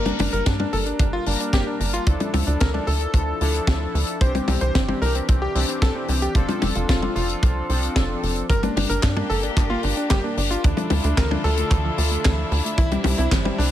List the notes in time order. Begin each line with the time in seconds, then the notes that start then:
Already playing: G1 G3 A#3 D4 A#4
0.06 D4, closed hi-hat, high tom
0.19 G1 D4, open hi-hat, high tom
0.33 G1 A#4, closed hi-hat
0.46 G2 D4, kick, snare, closed hi-hat
0.59 D4, high tom
0.73 G1 A4, open hi-hat
0.86 D4, closed hi-hat
0.99 G1 D4, kick, closed hi-hat
1.13 F4
1.26 G1 G3 A#3 D4 A#4, open hi-hat
1.40 D4, closed hi-hat
1.53 G1 G4, kick, snare, closed hi-hat
1.67 D4
1.80 G1 D4, open hi-hat
1.94 F4, closed hi-hat
2.07 D2 F3 D4 E4 A4, kick, closed hi-hat
2.20 D4, closed hi-hat, high tom
2.34 D2, open hi-hat, high tom
2.47 D2 D4, closed hi-hat
2.60 D2 A#4, kick, snare, closed hi-hat
2.74 D4, high tom
2.87 D2 A4, open hi-hat
3.00 closed hi-hat
3.14 D2, kick, closed hi-hat
3.41 D2 F3 D4 E4 A4, open hi-hat
3.54 closed hi-hat
3.67 D2, kick, snare, closed hi-hat
3.94 D2, open hi-hat
4.07 closed hi-hat
4.21 C2 E3 C4 D4 G4 C5, kick, closed hi-hat
4.35 C4, closed hi-hat, high tom
4.48 C2 C4, open hi-hat, high tom
4.61 C2 C5, closed hi-hat
4.75 G1 C4, kick, snare, closed hi-hat
4.88 C4, high tom
5.02 C2 A#4, open hi-hat
5.15 C4, closed hi-hat
5.28 C2 C4, kick, closed hi-hat
5.42 G4
5.55 C2 E3 C4 D4 G4, open hi-hat
5.68 C4, closed hi-hat
5.82 C2 A4, kick, snare, closed hi-hat
5.95 C4
6.08 C2 C4, open hi-hat
6.22 G4, closed hi-hat
6.35 F1 F3 C4 D4 F4 A4, kick, closed hi-hat
6.49 F4, closed hi-hat, high tom
6.62 F1, open hi-hat, high tom
6.75 F1 F4, closed hi-hat
6.89 F1 F4, kick, snare, closed hi-hat
7.02 F4, high tom
7.16 F1 F4, open hi-hat
7.29 closed hi-hat
7.43 C2, kick, closed hi-hat
7.69 C2 F3 C4 D4 A4, open hi-hat
7.83 closed hi-hat
7.96 F1, kick, snare, closed hi-hat
8.23 F1, open hi-hat
8.36 closed hi-hat
8.50 G1 G3 A#3 D4 G4 A#4, kick, closed hi-hat
8.63 A#3 D4, closed hi-hat, high tom
8.76 G1 D4, open hi-hat, high tom
8.90 G1 D4 A#4, closed hi-hat
9.03 G2 G3 D4, kick, snare, clap, closed hi-hat
9.16 A#3 D4, high tom
9.30 G1 A4, open hi-hat
9.43 D4, closed hi-hat
9.56 G1 G3 D4, kick, clap, closed hi-hat
9.70 A#3 F4
9.83 G1 D4, open hi-hat
9.97 D4, closed hi-hat
10.10 G1 G3 G4, kick, snare, clap, closed hi-hat
10.24 A#3 D4
10.37 G1 D4, open hi-hat
10.51 D4 F4, closed hi-hat
10.64 D2 D3 E3 D4 E4 F4 A4, kick, closed hi-hat
10.77 F3 D4, closed hi-hat, high tom
10.90 D2, open hi-hat, high tom
11.04 D2 A3 D4, closed hi-hat
11.17 D2 E3 A#4, kick, snare, clap, closed hi-hat
11.31 F3 D4, high tom
11.44 D2 A4, open hi-hat
11.57 A3, closed hi-hat
11.71 D2 E3, kick, clap, closed hi-hat
11.84 F3
11.98 D2, open hi-hat
12.11 A3, closed hi-hat
12.24 D2 E3, kick, snare, clap, closed hi-hat
12.38 F3
12.51 D2, open hi-hat
12.65 A3, closed hi-hat
12.78 C2 E3 C4 E4, kick, closed hi-hat
12.91 G3, closed hi-hat, high tom
13.04 C2 G3, open hi-hat, high tom
13.18 C2 C4 E4, closed hi-hat
13.32 G1 E3 G3, kick, snare, clap, closed hi-hat
13.45 G3, high tom
13.58 C2 D4, open hi-hat